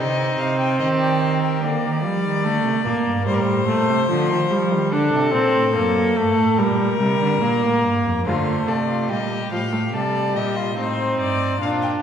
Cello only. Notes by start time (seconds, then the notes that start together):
Already playing: C3
0.39 C3
0.80 D#3
1.62 D3
1.83 D#3
2.03 F3
2.24 D#3
2.44 D3
2.65 C3
2.85 A#2
3.06 G2
3.27 A2
3.68 A#2
3.89 C3
4.09 D3
4.30 D#3
4.51 F3
4.71 D#3
4.92 D3
5.13 C3
5.33 A#2
5.55 A2
5.75 F#2
6.16 G2
6.36 A2
6.58 A#2
7.00 C3
7.20 D3
7.41 A#2
7.62 A2
7.83 G2
8.04 F2
8.25 D3
8.67 C3
9.09 A#2
9.51 A2
9.93 C3
10.35 A#2
10.76 A2
11.18 G2
11.60 A#2